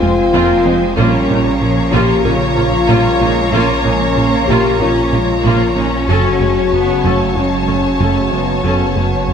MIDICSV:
0, 0, Header, 1, 11, 480
1, 0, Start_track
1, 0, Tempo, 638298
1, 733, Time_signature, 4, 2, 24, 8
1, 7019, End_track
2, 0, Start_track
2, 0, Title_t, "Violin section"
2, 0, Program_c, 0, 48
2, 0, Note_on_c, 0, 72, 61
2, 0, Note_on_c, 0, 80, 59
2, 706, Note_off_c, 0, 72, 0
2, 707, Note_off_c, 0, 80, 0
2, 730, Note_on_c, 0, 73, 71
2, 734, Note_on_c, 0, 82, 72
2, 4543, Note_off_c, 0, 82, 0
2, 4569, Note_off_c, 0, 73, 0
2, 4576, Note_on_c, 0, 81, 58
2, 4578, Note_on_c, 0, 73, 56
2, 7019, Note_off_c, 0, 73, 0
2, 7019, Note_off_c, 0, 81, 0
2, 7019, End_track
3, 0, Start_track
3, 0, Title_t, "French horn section"
3, 0, Program_c, 1, 60
3, 0, Note_on_c, 1, 65, 98
3, 729, Note_on_c, 1, 61, 87
3, 732, Note_off_c, 1, 65, 0
3, 1437, Note_off_c, 1, 61, 0
3, 1453, Note_on_c, 1, 67, 88
3, 1693, Note_off_c, 1, 67, 0
3, 1694, Note_on_c, 1, 65, 87
3, 2653, Note_off_c, 1, 65, 0
3, 2653, Note_on_c, 1, 61, 93
3, 3358, Note_off_c, 1, 61, 0
3, 3362, Note_on_c, 1, 67, 86
3, 3603, Note_off_c, 1, 67, 0
3, 3613, Note_on_c, 1, 65, 87
3, 4447, Note_off_c, 1, 65, 0
3, 4575, Note_on_c, 1, 66, 85
3, 5515, Note_off_c, 1, 66, 0
3, 5535, Note_on_c, 1, 61, 74
3, 6254, Note_off_c, 1, 61, 0
3, 6254, Note_on_c, 1, 59, 60
3, 6491, Note_off_c, 1, 59, 0
3, 6500, Note_on_c, 1, 59, 58
3, 6967, Note_off_c, 1, 59, 0
3, 6977, Note_on_c, 1, 57, 45
3, 7019, Note_off_c, 1, 57, 0
3, 7019, End_track
4, 0, Start_track
4, 0, Title_t, "Analog synth pad"
4, 0, Program_c, 2, 89
4, 0, Note_on_c, 2, 53, 69
4, 0, Note_on_c, 2, 60, 69
4, 0, Note_on_c, 2, 65, 67
4, 0, Note_on_c, 2, 72, 69
4, 703, Note_off_c, 2, 60, 0
4, 722, Note_off_c, 2, 53, 0
4, 722, Note_off_c, 2, 65, 0
4, 730, Note_on_c, 2, 58, 65
4, 731, Note_on_c, 2, 53, 70
4, 731, Note_on_c, 2, 65, 70
4, 733, Note_off_c, 2, 72, 0
4, 733, Note_on_c, 2, 73, 72
4, 4542, Note_off_c, 2, 53, 0
4, 4542, Note_off_c, 2, 65, 0
4, 4572, Note_off_c, 2, 58, 0
4, 4573, Note_off_c, 2, 73, 0
4, 4582, Note_on_c, 2, 54, 66
4, 4584, Note_on_c, 2, 73, 65
4, 4585, Note_on_c, 2, 66, 60
4, 4587, Note_on_c, 2, 49, 66
4, 7019, Note_off_c, 2, 49, 0
4, 7019, Note_off_c, 2, 54, 0
4, 7019, Note_off_c, 2, 66, 0
4, 7019, Note_off_c, 2, 73, 0
4, 7019, End_track
5, 0, Start_track
5, 0, Title_t, "Viola section"
5, 0, Program_c, 3, 48
5, 18, Note_on_c, 3, 60, 50
5, 18, Note_on_c, 3, 65, 55
5, 78, Note_off_c, 3, 60, 0
5, 78, Note_off_c, 3, 65, 0
5, 252, Note_on_c, 3, 60, 66
5, 253, Note_on_c, 3, 65, 74
5, 475, Note_off_c, 3, 60, 0
5, 476, Note_off_c, 3, 65, 0
5, 490, Note_on_c, 3, 60, 64
5, 491, Note_on_c, 3, 63, 57
5, 550, Note_off_c, 3, 60, 0
5, 551, Note_off_c, 3, 63, 0
5, 727, Note_on_c, 3, 58, 81
5, 730, Note_on_c, 3, 65, 67
5, 953, Note_off_c, 3, 58, 0
5, 955, Note_off_c, 3, 65, 0
5, 969, Note_on_c, 3, 58, 47
5, 972, Note_on_c, 3, 63, 49
5, 1029, Note_off_c, 3, 58, 0
5, 1032, Note_off_c, 3, 63, 0
5, 1446, Note_on_c, 3, 58, 80
5, 1447, Note_on_c, 3, 65, 70
5, 1673, Note_off_c, 3, 58, 0
5, 1673, Note_off_c, 3, 65, 0
5, 1688, Note_on_c, 3, 58, 53
5, 1689, Note_on_c, 3, 63, 54
5, 1748, Note_off_c, 3, 58, 0
5, 1749, Note_off_c, 3, 63, 0
5, 1933, Note_on_c, 3, 58, 52
5, 1934, Note_on_c, 3, 65, 59
5, 1993, Note_off_c, 3, 58, 0
5, 1994, Note_off_c, 3, 65, 0
5, 2172, Note_on_c, 3, 58, 67
5, 2174, Note_on_c, 3, 65, 67
5, 2396, Note_off_c, 3, 58, 0
5, 2397, Note_off_c, 3, 65, 0
5, 2414, Note_on_c, 3, 63, 67
5, 2415, Note_on_c, 3, 58, 56
5, 2474, Note_off_c, 3, 63, 0
5, 2475, Note_off_c, 3, 58, 0
5, 2660, Note_on_c, 3, 65, 76
5, 2663, Note_on_c, 3, 58, 76
5, 2880, Note_off_c, 3, 65, 0
5, 2882, Note_off_c, 3, 58, 0
5, 2893, Note_on_c, 3, 58, 51
5, 2896, Note_on_c, 3, 63, 49
5, 2953, Note_off_c, 3, 58, 0
5, 2956, Note_off_c, 3, 63, 0
5, 3381, Note_on_c, 3, 58, 61
5, 3383, Note_on_c, 3, 65, 73
5, 3600, Note_off_c, 3, 58, 0
5, 3601, Note_off_c, 3, 65, 0
5, 3620, Note_on_c, 3, 58, 46
5, 3620, Note_on_c, 3, 63, 44
5, 3680, Note_off_c, 3, 58, 0
5, 3681, Note_off_c, 3, 63, 0
5, 3858, Note_on_c, 3, 65, 50
5, 3861, Note_on_c, 3, 58, 48
5, 3919, Note_off_c, 3, 65, 0
5, 3921, Note_off_c, 3, 58, 0
5, 4097, Note_on_c, 3, 65, 67
5, 4098, Note_on_c, 3, 58, 72
5, 4319, Note_off_c, 3, 58, 0
5, 4319, Note_off_c, 3, 65, 0
5, 4337, Note_on_c, 3, 58, 65
5, 4338, Note_on_c, 3, 63, 54
5, 4397, Note_off_c, 3, 58, 0
5, 4398, Note_off_c, 3, 63, 0
5, 4575, Note_on_c, 3, 61, 72
5, 4578, Note_on_c, 3, 69, 70
5, 4797, Note_off_c, 3, 61, 0
5, 4799, Note_off_c, 3, 69, 0
5, 4816, Note_on_c, 3, 56, 47
5, 4816, Note_on_c, 3, 61, 47
5, 4876, Note_off_c, 3, 56, 0
5, 4876, Note_off_c, 3, 61, 0
5, 5290, Note_on_c, 3, 61, 58
5, 5291, Note_on_c, 3, 69, 49
5, 5515, Note_off_c, 3, 61, 0
5, 5515, Note_off_c, 3, 69, 0
5, 5536, Note_on_c, 3, 56, 34
5, 5537, Note_on_c, 3, 61, 36
5, 5596, Note_off_c, 3, 56, 0
5, 5597, Note_off_c, 3, 61, 0
5, 5769, Note_on_c, 3, 61, 44
5, 5773, Note_on_c, 3, 69, 37
5, 5829, Note_off_c, 3, 61, 0
5, 5833, Note_off_c, 3, 69, 0
5, 6014, Note_on_c, 3, 61, 45
5, 6014, Note_on_c, 3, 69, 42
5, 6237, Note_off_c, 3, 61, 0
5, 6237, Note_off_c, 3, 69, 0
5, 6252, Note_on_c, 3, 56, 45
5, 6252, Note_on_c, 3, 61, 41
5, 6312, Note_off_c, 3, 56, 0
5, 6312, Note_off_c, 3, 61, 0
5, 6496, Note_on_c, 3, 61, 53
5, 6498, Note_on_c, 3, 69, 48
5, 6718, Note_off_c, 3, 61, 0
5, 6719, Note_off_c, 3, 69, 0
5, 6738, Note_on_c, 3, 56, 29
5, 6738, Note_on_c, 3, 61, 34
5, 6798, Note_off_c, 3, 56, 0
5, 6798, Note_off_c, 3, 61, 0
5, 7019, End_track
6, 0, Start_track
6, 0, Title_t, "Synth arpeggio sound"
6, 0, Program_c, 4, 84
6, 19, Note_on_c, 4, 56, 57
6, 161, Note_off_c, 4, 56, 0
6, 253, Note_on_c, 4, 53, 88
6, 397, Note_off_c, 4, 53, 0
6, 495, Note_on_c, 4, 60, 61
6, 639, Note_off_c, 4, 60, 0
6, 733, Note_on_c, 4, 58, 83
6, 877, Note_off_c, 4, 58, 0
6, 975, Note_on_c, 4, 61, 61
6, 1119, Note_off_c, 4, 61, 0
6, 1448, Note_on_c, 4, 58, 89
6, 1593, Note_off_c, 4, 58, 0
6, 1692, Note_on_c, 4, 70, 60
6, 1836, Note_off_c, 4, 70, 0
6, 1931, Note_on_c, 4, 61, 59
6, 2076, Note_off_c, 4, 61, 0
6, 2169, Note_on_c, 4, 58, 84
6, 2314, Note_off_c, 4, 58, 0
6, 2409, Note_on_c, 4, 65, 63
6, 2555, Note_off_c, 4, 65, 0
6, 2651, Note_on_c, 4, 58, 79
6, 2796, Note_off_c, 4, 58, 0
6, 2896, Note_on_c, 4, 61, 58
6, 3039, Note_off_c, 4, 61, 0
6, 3380, Note_on_c, 4, 58, 76
6, 3522, Note_off_c, 4, 58, 0
6, 3618, Note_on_c, 4, 70, 61
6, 3761, Note_off_c, 4, 70, 0
6, 3860, Note_on_c, 4, 61, 55
6, 4002, Note_off_c, 4, 61, 0
6, 4101, Note_on_c, 4, 58, 85
6, 4242, Note_off_c, 4, 58, 0
6, 4338, Note_on_c, 4, 65, 59
6, 4481, Note_off_c, 4, 65, 0
6, 4579, Note_on_c, 4, 54, 76
6, 4721, Note_off_c, 4, 54, 0
6, 4822, Note_on_c, 4, 57, 53
6, 4963, Note_off_c, 4, 57, 0
6, 5296, Note_on_c, 4, 54, 87
6, 5439, Note_off_c, 4, 54, 0
6, 5539, Note_on_c, 4, 66, 49
6, 5681, Note_off_c, 4, 66, 0
6, 5770, Note_on_c, 4, 57, 52
6, 5915, Note_off_c, 4, 57, 0
6, 6017, Note_on_c, 4, 54, 77
6, 6160, Note_off_c, 4, 54, 0
6, 6257, Note_on_c, 4, 61, 52
6, 6400, Note_off_c, 4, 61, 0
6, 6498, Note_on_c, 4, 54, 74
6, 6640, Note_off_c, 4, 54, 0
6, 6733, Note_on_c, 4, 57, 56
6, 6877, Note_off_c, 4, 57, 0
6, 7019, End_track
7, 0, Start_track
7, 0, Title_t, "Cello section"
7, 0, Program_c, 5, 48
7, 19, Note_on_c, 5, 56, 67
7, 252, Note_on_c, 5, 58, 70
7, 256, Note_off_c, 5, 56, 0
7, 487, Note_off_c, 5, 58, 0
7, 489, Note_on_c, 5, 56, 74
7, 729, Note_on_c, 5, 55, 74
7, 731, Note_off_c, 5, 56, 0
7, 1202, Note_off_c, 5, 55, 0
7, 1213, Note_on_c, 5, 53, 68
7, 1687, Note_on_c, 5, 49, 62
7, 1693, Note_off_c, 5, 53, 0
7, 1925, Note_off_c, 5, 49, 0
7, 1932, Note_on_c, 5, 53, 63
7, 2172, Note_off_c, 5, 53, 0
7, 2174, Note_on_c, 5, 55, 69
7, 2412, Note_on_c, 5, 56, 74
7, 2413, Note_off_c, 5, 55, 0
7, 2652, Note_on_c, 5, 58, 64
7, 2653, Note_off_c, 5, 56, 0
7, 2886, Note_on_c, 5, 56, 65
7, 2892, Note_off_c, 5, 58, 0
7, 3125, Note_on_c, 5, 58, 64
7, 3130, Note_off_c, 5, 56, 0
7, 3609, Note_off_c, 5, 58, 0
7, 3610, Note_on_c, 5, 61, 64
7, 3852, Note_off_c, 5, 61, 0
7, 3854, Note_on_c, 5, 56, 60
7, 4094, Note_off_c, 5, 56, 0
7, 4096, Note_on_c, 5, 58, 54
7, 4331, Note_on_c, 5, 61, 68
7, 4334, Note_off_c, 5, 58, 0
7, 5038, Note_off_c, 5, 61, 0
7, 5055, Note_on_c, 5, 59, 60
7, 5289, Note_off_c, 5, 59, 0
7, 5291, Note_on_c, 5, 57, 52
7, 5532, Note_off_c, 5, 57, 0
7, 5536, Note_on_c, 5, 56, 47
7, 5770, Note_off_c, 5, 56, 0
7, 5773, Note_on_c, 5, 54, 49
7, 6012, Note_on_c, 5, 57, 45
7, 6013, Note_off_c, 5, 54, 0
7, 6253, Note_off_c, 5, 57, 0
7, 6257, Note_on_c, 5, 56, 48
7, 6490, Note_off_c, 5, 56, 0
7, 6499, Note_on_c, 5, 54, 42
7, 7019, Note_off_c, 5, 54, 0
7, 7019, End_track
8, 0, Start_track
8, 0, Title_t, "Trombone section"
8, 0, Program_c, 6, 61
8, 0, Note_on_c, 6, 48, 61
8, 0, Note_on_c, 6, 60, 57
8, 707, Note_off_c, 6, 48, 0
8, 707, Note_off_c, 6, 60, 0
8, 742, Note_on_c, 6, 49, 65
8, 742, Note_on_c, 6, 58, 67
8, 4458, Note_off_c, 6, 49, 0
8, 4458, Note_off_c, 6, 58, 0
8, 4585, Note_on_c, 6, 49, 60
8, 4586, Note_on_c, 6, 54, 62
8, 7019, Note_off_c, 6, 49, 0
8, 7019, Note_off_c, 6, 54, 0
8, 7019, End_track
9, 0, Start_track
9, 0, Title_t, "Analog synth bass"
9, 0, Program_c, 7, 38
9, 16, Note_on_c, 7, 41, 58
9, 159, Note_off_c, 7, 41, 0
9, 258, Note_on_c, 7, 41, 80
9, 401, Note_off_c, 7, 41, 0
9, 496, Note_on_c, 7, 53, 63
9, 639, Note_off_c, 7, 53, 0
9, 738, Note_on_c, 7, 46, 78
9, 880, Note_off_c, 7, 46, 0
9, 980, Note_on_c, 7, 46, 53
9, 1122, Note_off_c, 7, 46, 0
9, 1216, Note_on_c, 7, 46, 69
9, 1359, Note_off_c, 7, 46, 0
9, 1457, Note_on_c, 7, 46, 84
9, 1600, Note_off_c, 7, 46, 0
9, 1698, Note_on_c, 7, 46, 62
9, 1840, Note_off_c, 7, 46, 0
9, 1936, Note_on_c, 7, 46, 55
9, 2079, Note_off_c, 7, 46, 0
9, 2171, Note_on_c, 7, 46, 85
9, 2316, Note_off_c, 7, 46, 0
9, 2415, Note_on_c, 7, 58, 63
9, 2558, Note_off_c, 7, 58, 0
9, 2651, Note_on_c, 7, 46, 76
9, 2796, Note_off_c, 7, 46, 0
9, 2894, Note_on_c, 7, 46, 54
9, 3038, Note_off_c, 7, 46, 0
9, 3138, Note_on_c, 7, 46, 61
9, 3281, Note_off_c, 7, 46, 0
9, 3378, Note_on_c, 7, 46, 76
9, 3521, Note_off_c, 7, 46, 0
9, 3613, Note_on_c, 7, 46, 55
9, 3757, Note_off_c, 7, 46, 0
9, 3854, Note_on_c, 7, 46, 52
9, 3998, Note_off_c, 7, 46, 0
9, 4095, Note_on_c, 7, 46, 78
9, 4239, Note_off_c, 7, 46, 0
9, 4335, Note_on_c, 7, 58, 62
9, 4479, Note_off_c, 7, 58, 0
9, 4577, Note_on_c, 7, 42, 74
9, 4720, Note_off_c, 7, 42, 0
9, 4814, Note_on_c, 7, 42, 49
9, 4958, Note_off_c, 7, 42, 0
9, 5060, Note_on_c, 7, 42, 64
9, 5202, Note_off_c, 7, 42, 0
9, 5297, Note_on_c, 7, 42, 75
9, 5440, Note_off_c, 7, 42, 0
9, 5537, Note_on_c, 7, 42, 53
9, 5680, Note_off_c, 7, 42, 0
9, 5779, Note_on_c, 7, 42, 46
9, 5921, Note_off_c, 7, 42, 0
9, 6015, Note_on_c, 7, 42, 65
9, 6158, Note_off_c, 7, 42, 0
9, 6259, Note_on_c, 7, 54, 52
9, 6401, Note_off_c, 7, 54, 0
9, 6500, Note_on_c, 7, 42, 69
9, 6642, Note_off_c, 7, 42, 0
9, 6738, Note_on_c, 7, 42, 50
9, 6881, Note_off_c, 7, 42, 0
9, 6979, Note_on_c, 7, 42, 58
9, 7019, Note_off_c, 7, 42, 0
9, 7019, End_track
10, 0, Start_track
10, 0, Title_t, "Double bass section"
10, 0, Program_c, 8, 48
10, 21, Note_on_c, 8, 41, 53
10, 82, Note_off_c, 8, 41, 0
10, 257, Note_on_c, 8, 41, 78
10, 318, Note_off_c, 8, 41, 0
10, 494, Note_on_c, 8, 41, 52
10, 554, Note_off_c, 8, 41, 0
10, 733, Note_on_c, 8, 34, 72
10, 793, Note_off_c, 8, 34, 0
10, 974, Note_on_c, 8, 34, 52
10, 1035, Note_off_c, 8, 34, 0
10, 1453, Note_on_c, 8, 34, 78
10, 1514, Note_off_c, 8, 34, 0
10, 1689, Note_on_c, 8, 34, 55
10, 1749, Note_off_c, 8, 34, 0
10, 1935, Note_on_c, 8, 34, 50
10, 1995, Note_off_c, 8, 34, 0
10, 2176, Note_on_c, 8, 34, 73
10, 2237, Note_off_c, 8, 34, 0
10, 2412, Note_on_c, 8, 34, 55
10, 2472, Note_off_c, 8, 34, 0
10, 2658, Note_on_c, 8, 34, 67
10, 2718, Note_off_c, 8, 34, 0
10, 2897, Note_on_c, 8, 34, 49
10, 2957, Note_off_c, 8, 34, 0
10, 3375, Note_on_c, 8, 34, 75
10, 3435, Note_off_c, 8, 34, 0
10, 3613, Note_on_c, 8, 34, 56
10, 3673, Note_off_c, 8, 34, 0
10, 3852, Note_on_c, 8, 34, 49
10, 3912, Note_off_c, 8, 34, 0
10, 4091, Note_on_c, 8, 34, 71
10, 4151, Note_off_c, 8, 34, 0
10, 4333, Note_on_c, 8, 34, 45
10, 4393, Note_off_c, 8, 34, 0
10, 4576, Note_on_c, 8, 30, 58
10, 4636, Note_off_c, 8, 30, 0
10, 4811, Note_on_c, 8, 30, 44
10, 4871, Note_off_c, 8, 30, 0
10, 5297, Note_on_c, 8, 30, 67
10, 5357, Note_off_c, 8, 30, 0
10, 5536, Note_on_c, 8, 30, 39
10, 5596, Note_off_c, 8, 30, 0
10, 5778, Note_on_c, 8, 30, 42
10, 5839, Note_off_c, 8, 30, 0
10, 6011, Note_on_c, 8, 30, 47
10, 6071, Note_off_c, 8, 30, 0
10, 6249, Note_on_c, 8, 30, 35
10, 6310, Note_off_c, 8, 30, 0
10, 6492, Note_on_c, 8, 30, 44
10, 6552, Note_off_c, 8, 30, 0
10, 6736, Note_on_c, 8, 30, 30
10, 6796, Note_off_c, 8, 30, 0
10, 7019, End_track
11, 0, Start_track
11, 0, Title_t, "Detuned saw bass"
11, 0, Program_c, 10, 39
11, 0, Note_on_c, 10, 29, 69
11, 726, Note_on_c, 10, 34, 67
11, 737, Note_off_c, 10, 29, 0
11, 4576, Note_on_c, 10, 30, 62
11, 4588, Note_off_c, 10, 34, 0
11, 7019, Note_off_c, 10, 30, 0
11, 7019, End_track
0, 0, End_of_file